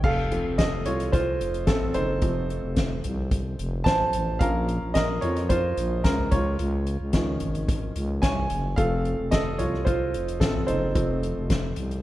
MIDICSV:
0, 0, Header, 1, 4, 480
1, 0, Start_track
1, 0, Tempo, 545455
1, 37, Time_signature, 4, 2, 24, 8
1, 10579, End_track
2, 0, Start_track
2, 0, Title_t, "Grand piano"
2, 0, Program_c, 0, 0
2, 0, Control_c, 0, 64, 127
2, 34, Note_on_c, 0, 77, 112
2, 45, Note_on_c, 0, 69, 85
2, 47, Control_c, 0, 64, 0
2, 183, Control_c, 0, 64, 127
2, 272, Note_on_c, 0, 53, 52
2, 276, Note_on_c, 0, 57, 44
2, 283, Note_on_c, 0, 60, 57
2, 488, Note_off_c, 0, 69, 0
2, 511, Note_on_c, 0, 75, 91
2, 526, Note_on_c, 0, 69, 70
2, 530, Note_off_c, 0, 77, 0
2, 566, Note_off_c, 0, 75, 0
2, 579, Note_off_c, 0, 69, 0
2, 754, Note_on_c, 0, 73, 85
2, 764, Note_on_c, 0, 65, 61
2, 984, Note_off_c, 0, 65, 0
2, 989, Note_on_c, 0, 72, 95
2, 1001, Note_on_c, 0, 65, 79
2, 1003, Note_off_c, 0, 73, 0
2, 1446, Note_off_c, 0, 65, 0
2, 1468, Note_off_c, 0, 60, 0
2, 1468, Note_on_c, 0, 69, 81
2, 1481, Note_on_c, 0, 60, 67
2, 1488, Note_off_c, 0, 72, 0
2, 1703, Note_off_c, 0, 60, 0
2, 1711, Note_on_c, 0, 72, 99
2, 1720, Note_on_c, 0, 63, 67
2, 1721, Note_off_c, 0, 69, 0
2, 1939, Note_off_c, 0, 53, 0
2, 1944, Note_off_c, 0, 57, 0
2, 1952, Note_on_c, 0, 53, 57
2, 1958, Note_on_c, 0, 57, 53
2, 1962, Note_on_c, 0, 60, 60
2, 2640, Note_off_c, 0, 53, 0
2, 2643, Note_off_c, 0, 57, 0
2, 2645, Note_off_c, 0, 60, 0
2, 3120, Note_off_c, 0, 72, 0
2, 3124, Note_off_c, 0, 63, 0
2, 3380, Note_on_c, 0, 81, 110
2, 3402, Note_on_c, 0, 72, 84
2, 3847, Note_off_c, 0, 72, 0
2, 3865, Note_on_c, 0, 77, 99
2, 3875, Note_on_c, 0, 53, 59
2, 3879, Note_on_c, 0, 58, 49
2, 3883, Note_on_c, 0, 61, 63
2, 3884, Note_off_c, 0, 81, 0
2, 3886, Note_on_c, 0, 70, 87
2, 3889, Control_c, 0, 64, 0
2, 4049, Control_c, 0, 64, 127
2, 4196, Note_off_c, 0, 53, 0
2, 4198, Note_off_c, 0, 58, 0
2, 4200, Note_off_c, 0, 61, 0
2, 4329, Note_off_c, 0, 70, 0
2, 4347, Note_on_c, 0, 75, 106
2, 4366, Note_off_c, 0, 77, 0
2, 4366, Note_on_c, 0, 70, 75
2, 4586, Note_off_c, 0, 70, 0
2, 4588, Note_on_c, 0, 73, 88
2, 4600, Note_off_c, 0, 75, 0
2, 4606, Note_on_c, 0, 65, 61
2, 4826, Note_off_c, 0, 65, 0
2, 4834, Note_on_c, 0, 72, 99
2, 4840, Note_off_c, 0, 73, 0
2, 4850, Note_on_c, 0, 65, 78
2, 5291, Note_off_c, 0, 65, 0
2, 5314, Note_on_c, 0, 70, 87
2, 5331, Note_off_c, 0, 72, 0
2, 5331, Note_on_c, 0, 61, 64
2, 5548, Note_off_c, 0, 61, 0
2, 5556, Note_on_c, 0, 73, 89
2, 5564, Note_off_c, 0, 70, 0
2, 5569, Control_c, 0, 64, 0
2, 5573, Note_on_c, 0, 65, 65
2, 5701, Control_c, 0, 64, 127
2, 6277, Note_on_c, 0, 51, 62
2, 6284, Note_on_c, 0, 53, 58
2, 6286, Note_on_c, 0, 61, 64
2, 6962, Note_off_c, 0, 73, 0
2, 6970, Note_off_c, 0, 65, 0
2, 7232, Note_on_c, 0, 80, 106
2, 7247, Note_on_c, 0, 73, 76
2, 7682, Note_off_c, 0, 51, 0
2, 7685, Note_off_c, 0, 53, 0
2, 7686, Note_off_c, 0, 61, 0
2, 7689, Note_off_c, 0, 73, 0
2, 7712, Note_on_c, 0, 77, 103
2, 7715, Note_on_c, 0, 53, 56
2, 7720, Note_on_c, 0, 57, 51
2, 7728, Control_c, 0, 64, 0
2, 7728, Note_on_c, 0, 60, 63
2, 7729, Note_off_c, 0, 80, 0
2, 7730, Note_on_c, 0, 69, 73
2, 7855, Control_c, 0, 64, 127
2, 8161, Note_off_c, 0, 77, 0
2, 8170, Note_off_c, 0, 69, 0
2, 8195, Note_on_c, 0, 75, 91
2, 8209, Note_on_c, 0, 69, 79
2, 8401, Note_off_c, 0, 53, 0
2, 8403, Note_off_c, 0, 57, 0
2, 8408, Note_off_c, 0, 60, 0
2, 8427, Note_off_c, 0, 69, 0
2, 8433, Note_on_c, 0, 73, 75
2, 8443, Note_on_c, 0, 65, 63
2, 8444, Note_off_c, 0, 75, 0
2, 8658, Note_off_c, 0, 73, 0
2, 8664, Note_off_c, 0, 65, 0
2, 8667, Note_on_c, 0, 72, 85
2, 8683, Note_on_c, 0, 65, 74
2, 9127, Note_off_c, 0, 65, 0
2, 9152, Note_on_c, 0, 69, 80
2, 9162, Note_on_c, 0, 60, 67
2, 9166, Note_off_c, 0, 72, 0
2, 9383, Note_off_c, 0, 60, 0
2, 9388, Note_on_c, 0, 72, 89
2, 9399, Note_on_c, 0, 63, 70
2, 9402, Note_off_c, 0, 69, 0
2, 9629, Note_on_c, 0, 53, 57
2, 9634, Note_on_c, 0, 57, 50
2, 9642, Note_on_c, 0, 60, 59
2, 10317, Note_off_c, 0, 53, 0
2, 10320, Note_off_c, 0, 57, 0
2, 10324, Note_off_c, 0, 60, 0
2, 10579, Note_off_c, 0, 63, 0
2, 10579, Note_off_c, 0, 72, 0
2, 10579, End_track
3, 0, Start_track
3, 0, Title_t, "FM bass"
3, 0, Program_c, 1, 39
3, 35, Note_on_c, 1, 29, 105
3, 371, Note_off_c, 1, 29, 0
3, 397, Note_on_c, 1, 29, 85
3, 759, Note_on_c, 1, 36, 92
3, 772, Note_off_c, 1, 29, 0
3, 1239, Note_on_c, 1, 29, 100
3, 1252, Note_off_c, 1, 36, 0
3, 1475, Note_on_c, 1, 33, 82
3, 1489, Note_off_c, 1, 29, 0
3, 1700, Note_off_c, 1, 33, 0
3, 1717, Note_on_c, 1, 30, 101
3, 1941, Note_off_c, 1, 30, 0
3, 1957, Note_on_c, 1, 29, 97
3, 2292, Note_off_c, 1, 29, 0
3, 2319, Note_on_c, 1, 29, 90
3, 2654, Note_off_c, 1, 29, 0
3, 2687, Note_on_c, 1, 36, 91
3, 3130, Note_off_c, 1, 36, 0
3, 3165, Note_on_c, 1, 29, 110
3, 3385, Note_off_c, 1, 29, 0
3, 3401, Note_on_c, 1, 33, 82
3, 3623, Note_off_c, 1, 33, 0
3, 3641, Note_on_c, 1, 33, 96
3, 3863, Note_off_c, 1, 33, 0
3, 3880, Note_on_c, 1, 34, 119
3, 4214, Note_off_c, 1, 34, 0
3, 4243, Note_on_c, 1, 34, 83
3, 4576, Note_off_c, 1, 34, 0
3, 4605, Note_on_c, 1, 41, 95
3, 5048, Note_off_c, 1, 41, 0
3, 5083, Note_on_c, 1, 34, 107
3, 5304, Note_off_c, 1, 34, 0
3, 5322, Note_on_c, 1, 37, 85
3, 5544, Note_off_c, 1, 37, 0
3, 5563, Note_on_c, 1, 37, 109
3, 5784, Note_off_c, 1, 37, 0
3, 5805, Note_on_c, 1, 37, 117
3, 6137, Note_off_c, 1, 37, 0
3, 6164, Note_on_c, 1, 37, 84
3, 6496, Note_off_c, 1, 37, 0
3, 6529, Note_on_c, 1, 32, 86
3, 6970, Note_off_c, 1, 32, 0
3, 7007, Note_on_c, 1, 37, 100
3, 7226, Note_off_c, 1, 37, 0
3, 7243, Note_on_c, 1, 36, 85
3, 7464, Note_off_c, 1, 36, 0
3, 7488, Note_on_c, 1, 30, 105
3, 7707, Note_off_c, 1, 30, 0
3, 7725, Note_on_c, 1, 29, 127
3, 8056, Note_off_c, 1, 29, 0
3, 8091, Note_on_c, 1, 29, 89
3, 8447, Note_on_c, 1, 36, 89
3, 8460, Note_off_c, 1, 29, 0
3, 8929, Note_on_c, 1, 29, 93
3, 8942, Note_off_c, 1, 36, 0
3, 9163, Note_on_c, 1, 33, 84
3, 9176, Note_off_c, 1, 29, 0
3, 9383, Note_off_c, 1, 33, 0
3, 9407, Note_on_c, 1, 30, 103
3, 9625, Note_off_c, 1, 30, 0
3, 9642, Note_on_c, 1, 29, 109
3, 9974, Note_off_c, 1, 29, 0
3, 10005, Note_on_c, 1, 29, 96
3, 10336, Note_off_c, 1, 29, 0
3, 10361, Note_on_c, 1, 36, 82
3, 10579, Note_off_c, 1, 36, 0
3, 10579, End_track
4, 0, Start_track
4, 0, Title_t, "Drums"
4, 30, Note_on_c, 9, 49, 92
4, 33, Note_on_c, 9, 36, 111
4, 118, Note_off_c, 9, 49, 0
4, 121, Note_off_c, 9, 36, 0
4, 279, Note_on_c, 9, 42, 55
4, 367, Note_off_c, 9, 42, 0
4, 515, Note_on_c, 9, 42, 93
4, 517, Note_on_c, 9, 38, 105
4, 518, Note_on_c, 9, 36, 106
4, 603, Note_off_c, 9, 42, 0
4, 605, Note_off_c, 9, 38, 0
4, 606, Note_off_c, 9, 36, 0
4, 753, Note_on_c, 9, 42, 71
4, 841, Note_off_c, 9, 42, 0
4, 879, Note_on_c, 9, 42, 48
4, 882, Note_on_c, 9, 38, 29
4, 967, Note_off_c, 9, 42, 0
4, 970, Note_off_c, 9, 38, 0
4, 997, Note_on_c, 9, 36, 113
4, 998, Note_on_c, 9, 42, 84
4, 1085, Note_off_c, 9, 36, 0
4, 1086, Note_off_c, 9, 42, 0
4, 1240, Note_on_c, 9, 42, 61
4, 1328, Note_off_c, 9, 42, 0
4, 1357, Note_on_c, 9, 42, 48
4, 1445, Note_off_c, 9, 42, 0
4, 1469, Note_on_c, 9, 38, 105
4, 1470, Note_on_c, 9, 42, 78
4, 1474, Note_on_c, 9, 36, 93
4, 1557, Note_off_c, 9, 38, 0
4, 1558, Note_off_c, 9, 42, 0
4, 1562, Note_off_c, 9, 36, 0
4, 1596, Note_on_c, 9, 43, 61
4, 1684, Note_off_c, 9, 43, 0
4, 1709, Note_on_c, 9, 42, 73
4, 1797, Note_off_c, 9, 42, 0
4, 1951, Note_on_c, 9, 42, 81
4, 1955, Note_on_c, 9, 36, 106
4, 2039, Note_off_c, 9, 42, 0
4, 2043, Note_off_c, 9, 36, 0
4, 2202, Note_on_c, 9, 42, 51
4, 2290, Note_off_c, 9, 42, 0
4, 2433, Note_on_c, 9, 42, 95
4, 2434, Note_on_c, 9, 38, 98
4, 2438, Note_on_c, 9, 36, 97
4, 2521, Note_off_c, 9, 42, 0
4, 2522, Note_off_c, 9, 38, 0
4, 2526, Note_off_c, 9, 36, 0
4, 2675, Note_on_c, 9, 42, 64
4, 2681, Note_on_c, 9, 43, 62
4, 2763, Note_off_c, 9, 42, 0
4, 2769, Note_off_c, 9, 43, 0
4, 2916, Note_on_c, 9, 36, 104
4, 2916, Note_on_c, 9, 42, 86
4, 3004, Note_off_c, 9, 36, 0
4, 3004, Note_off_c, 9, 42, 0
4, 3161, Note_on_c, 9, 42, 57
4, 3249, Note_off_c, 9, 42, 0
4, 3398, Note_on_c, 9, 36, 107
4, 3398, Note_on_c, 9, 38, 109
4, 3400, Note_on_c, 9, 42, 82
4, 3486, Note_off_c, 9, 36, 0
4, 3486, Note_off_c, 9, 38, 0
4, 3488, Note_off_c, 9, 42, 0
4, 3520, Note_on_c, 9, 43, 63
4, 3608, Note_off_c, 9, 43, 0
4, 3635, Note_on_c, 9, 42, 69
4, 3723, Note_off_c, 9, 42, 0
4, 3878, Note_on_c, 9, 36, 114
4, 3879, Note_on_c, 9, 42, 89
4, 3966, Note_off_c, 9, 36, 0
4, 3967, Note_off_c, 9, 42, 0
4, 4123, Note_on_c, 9, 42, 59
4, 4211, Note_off_c, 9, 42, 0
4, 4357, Note_on_c, 9, 42, 92
4, 4358, Note_on_c, 9, 38, 105
4, 4361, Note_on_c, 9, 36, 84
4, 4445, Note_off_c, 9, 42, 0
4, 4446, Note_off_c, 9, 38, 0
4, 4449, Note_off_c, 9, 36, 0
4, 4594, Note_on_c, 9, 42, 72
4, 4682, Note_off_c, 9, 42, 0
4, 4721, Note_on_c, 9, 42, 47
4, 4724, Note_on_c, 9, 38, 27
4, 4809, Note_off_c, 9, 42, 0
4, 4812, Note_off_c, 9, 38, 0
4, 4839, Note_on_c, 9, 42, 92
4, 4840, Note_on_c, 9, 36, 107
4, 4927, Note_off_c, 9, 42, 0
4, 4928, Note_off_c, 9, 36, 0
4, 5081, Note_on_c, 9, 42, 66
4, 5169, Note_off_c, 9, 42, 0
4, 5317, Note_on_c, 9, 38, 109
4, 5319, Note_on_c, 9, 42, 85
4, 5320, Note_on_c, 9, 36, 109
4, 5405, Note_off_c, 9, 38, 0
4, 5407, Note_off_c, 9, 42, 0
4, 5408, Note_off_c, 9, 36, 0
4, 5438, Note_on_c, 9, 43, 66
4, 5526, Note_off_c, 9, 43, 0
4, 5558, Note_on_c, 9, 42, 69
4, 5562, Note_on_c, 9, 36, 95
4, 5646, Note_off_c, 9, 42, 0
4, 5650, Note_off_c, 9, 36, 0
4, 5800, Note_on_c, 9, 42, 79
4, 5888, Note_off_c, 9, 42, 0
4, 6043, Note_on_c, 9, 42, 54
4, 6131, Note_off_c, 9, 42, 0
4, 6274, Note_on_c, 9, 42, 93
4, 6276, Note_on_c, 9, 38, 97
4, 6283, Note_on_c, 9, 36, 89
4, 6362, Note_off_c, 9, 42, 0
4, 6364, Note_off_c, 9, 38, 0
4, 6371, Note_off_c, 9, 36, 0
4, 6512, Note_on_c, 9, 42, 64
4, 6518, Note_on_c, 9, 43, 56
4, 6600, Note_off_c, 9, 42, 0
4, 6606, Note_off_c, 9, 43, 0
4, 6643, Note_on_c, 9, 42, 45
4, 6731, Note_off_c, 9, 42, 0
4, 6762, Note_on_c, 9, 36, 116
4, 6764, Note_on_c, 9, 42, 91
4, 6850, Note_off_c, 9, 36, 0
4, 6852, Note_off_c, 9, 42, 0
4, 7002, Note_on_c, 9, 42, 61
4, 7090, Note_off_c, 9, 42, 0
4, 7237, Note_on_c, 9, 38, 104
4, 7239, Note_on_c, 9, 42, 91
4, 7241, Note_on_c, 9, 36, 104
4, 7325, Note_off_c, 9, 38, 0
4, 7327, Note_off_c, 9, 42, 0
4, 7329, Note_off_c, 9, 36, 0
4, 7366, Note_on_c, 9, 43, 60
4, 7454, Note_off_c, 9, 43, 0
4, 7479, Note_on_c, 9, 42, 74
4, 7567, Note_off_c, 9, 42, 0
4, 7723, Note_on_c, 9, 36, 119
4, 7723, Note_on_c, 9, 42, 86
4, 7811, Note_off_c, 9, 36, 0
4, 7811, Note_off_c, 9, 42, 0
4, 7967, Note_on_c, 9, 42, 49
4, 8055, Note_off_c, 9, 42, 0
4, 8199, Note_on_c, 9, 42, 97
4, 8200, Note_on_c, 9, 38, 102
4, 8204, Note_on_c, 9, 36, 91
4, 8287, Note_off_c, 9, 42, 0
4, 8288, Note_off_c, 9, 38, 0
4, 8292, Note_off_c, 9, 36, 0
4, 8440, Note_on_c, 9, 42, 68
4, 8446, Note_on_c, 9, 43, 60
4, 8528, Note_off_c, 9, 42, 0
4, 8534, Note_off_c, 9, 43, 0
4, 8568, Note_on_c, 9, 38, 30
4, 8656, Note_off_c, 9, 38, 0
4, 8682, Note_on_c, 9, 36, 107
4, 8685, Note_on_c, 9, 42, 89
4, 8770, Note_off_c, 9, 36, 0
4, 8773, Note_off_c, 9, 42, 0
4, 8926, Note_on_c, 9, 42, 57
4, 9014, Note_off_c, 9, 42, 0
4, 9050, Note_on_c, 9, 42, 56
4, 9138, Note_off_c, 9, 42, 0
4, 9161, Note_on_c, 9, 36, 100
4, 9162, Note_on_c, 9, 38, 113
4, 9164, Note_on_c, 9, 42, 83
4, 9249, Note_off_c, 9, 36, 0
4, 9250, Note_off_c, 9, 38, 0
4, 9252, Note_off_c, 9, 42, 0
4, 9287, Note_on_c, 9, 43, 65
4, 9375, Note_off_c, 9, 43, 0
4, 9397, Note_on_c, 9, 42, 68
4, 9485, Note_off_c, 9, 42, 0
4, 9640, Note_on_c, 9, 36, 108
4, 9640, Note_on_c, 9, 42, 80
4, 9728, Note_off_c, 9, 36, 0
4, 9728, Note_off_c, 9, 42, 0
4, 9885, Note_on_c, 9, 42, 51
4, 9973, Note_off_c, 9, 42, 0
4, 10120, Note_on_c, 9, 36, 97
4, 10120, Note_on_c, 9, 42, 95
4, 10121, Note_on_c, 9, 38, 102
4, 10208, Note_off_c, 9, 36, 0
4, 10208, Note_off_c, 9, 42, 0
4, 10209, Note_off_c, 9, 38, 0
4, 10351, Note_on_c, 9, 42, 70
4, 10439, Note_off_c, 9, 42, 0
4, 10483, Note_on_c, 9, 42, 43
4, 10571, Note_off_c, 9, 42, 0
4, 10579, End_track
0, 0, End_of_file